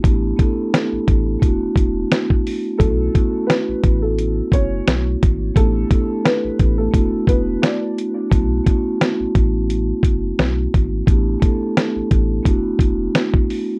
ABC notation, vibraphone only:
X:1
M:4/4
L:1/16
Q:"Swing 16ths" 1/4=87
K:Bm
V:1 name="Vibraphone"
[A,B,DEG]2 [A,B,DEA]4- [A,B,DEA] z [A,B,DEF]6 z2 | [A,B,CEF]2 [A,B,CEF]4- [A,B,CEF] z8 z | [A,B,DEG]2 [A,B,DEA]4- [A,B,DEA] z [A,B,DEF]6 z2 | [A,B,CEF]2 [A,B,CEF]4- [A,B,CEF] z8 z |
[A,B,DEG]2 [A,B,DEA]4- [A,B,DEA] z [A,B,DEF]6 z2 |]